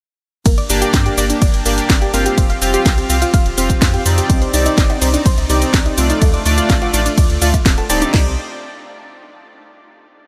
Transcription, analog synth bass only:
0.46 0.60 G1 loud
0.70 0.84 G1 medium
0.94 1.08 G2 medium
1.18 1.32 G1 loud
1.42 1.49 G1 loud
1.54 1.61 G1 medium
1.66 1.80 G1 loud
1.90 2.04 G1 loud
2.14 2.28 G1 medium
2.38 2.52 F1 medium
2.62 2.76 F1 loud
2.86 3.00 C2 loud
3.10 3.24 C2 loud
3.34 3.41 F1 medium
3.46 3.53 F1 medium
3.58 3.72 F1 loud
3.82 3.96 F2 medium
4.06 4.20 F2 medium
4.30 4.44 C2 loud
4.54 4.68 C2 medium
4.78 4.92 G1 medium
5.02 5.16 C2 loud
5.26 5.33 C2 loud
5.38 5.45 C2 medium
5.50 5.64 C2 loud
5.74 5.88 C2 loud
5.98 6.12 C2 medium
6.22 6.36 D2 medium
6.46 6.60 D2 loud
6.70 6.84 A1 loud
6.94 7.08 A1 loud
7.18 7.25 D2 medium
7.30 7.37 D2 medium
7.42 7.56 D2 loud
7.66 7.80 D1 medium
7.90 8.04 D1 medium
8.14 8.36 C2 loud

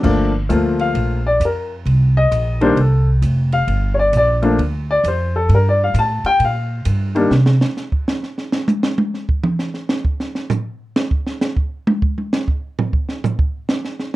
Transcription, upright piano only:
0.03 0.30 F3 medium
0.03 0.30 A3 medium
0.03 0.30 A#3 medium
0.03 0.31 D4 medium
0.49 1.18 F3 medium
0.49 1.18 A3 medium
0.49 1.19 A#3 medium
0.49 1.19 F4 medium
0.80 1.22 F5 medium
1.27 1.41 D5 medium
1.45 1.71 A#4 medium
2.17 2.59 D#5 medium
2.61 2.75 D#3 medium
2.61 2.75 G3 medium
2.61 2.75 A#3 medium
2.61 2.75 D4 medium
2.61 2.77 C5 medium
2.81 3.07 A4 medium
3.53 3.95 F5 medium
3.94 3.96 C#5 medium
3.99 4.14 D5 medium
4.17 4.34 D5 medium
4.42 4.57 F3 medium
4.42 4.57 A3 medium
4.42 4.57 A#3 medium
4.42 4.57 D4 medium
4.91 5.05 D5 medium
5.08 5.35 C5 medium
5.36 5.50 A4 medium
5.55 5.67 A#4 medium
5.69 5.81 D5 medium
5.84 5.97 F5 medium
5.99 6.26 A5 medium
6.26 6.41 G5 medium
6.45 7.22 F5 medium
7.15 7.30 D#3 medium
7.15 7.30 G3 medium
7.15 7.30 A#3 medium
7.15 7.30 D4 medium

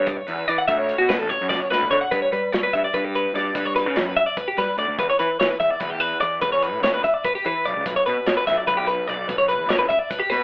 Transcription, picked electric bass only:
0.00 0.12 G2 medium
0.28 0.43 E2 medium
0.49 0.56 E3 medium
0.68 0.92 D2 medium
1.00 1.15 B2 medium
1.21 1.28 A1 medium
1.41 1.56 F#2 medium
1.71 1.86 D2 medium
1.91 1.99 D3 medium
2.12 2.20 G2 medium
2.32 2.40 G3 medium
2.54 2.61 G3 medium
2.74 2.81 G2 medium
2.94 3.25 G2 medium
3.34 3.50 G2 medium
3.55 3.86 G2 medium
3.86 3.98 C#3 medium
3.96 4.12 F#2 medium
4.58 4.66 G3 medium
4.78 4.86 D2 medium
4.88 4.96 D2 medium
4.99 5.07 E2 medium
5.20 5.27 E3 medium
5.41 5.48 E3 medium
5.60 5.68 E2 medium
5.81 6.12 E2 medium
6.22 6.37 E2 loud
6.43 6.73 E2 medium
6.73 6.83 A2 medium
6.83 6.99 D2 medium
7.46 7.53 E3 medium
7.67 7.74 B1 medium
7.76 7.84 C#2 medium
7.86 7.94 B1 medium
8.07 8.15 B2 medium
8.27 8.35 B2 medium
8.47 8.55 B1 medium
8.68 8.99 B1 medium
9.08 9.24 B1 medium
9.29 9.60 B1 loud
9.60 9.69 E2 medium
9.69 9.84 A1 medium
10.31 10.39 B2 medium

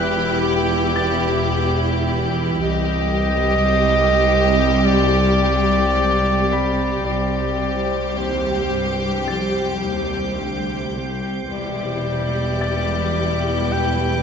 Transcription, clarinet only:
0.00 0.41 B4 medium
0.39 2.34 G4 medium
2.62 4.87 D#5 loud
4.85 7.05 D5 medium
7.06 8.19 D5 medium
8.18 10.95 C5 soft
11.49 13.74 D5 medium
13.73 14.23 G5 medium

